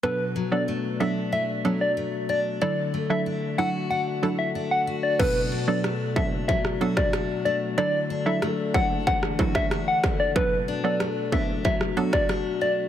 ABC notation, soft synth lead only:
X:1
M:4/4
L:1/16
Q:1/4=93
K:Bm
V:1 name="Soft synth lead"
B2 z d z2 e z e z2 d z2 d z | d2 z e z2 f z f z2 e z f z d | B2 z d z2 e z e z2 d z2 d z | d2 z e z2 f z f z2 e z f z d |
B2 z d z2 e z e z2 d z2 d z |]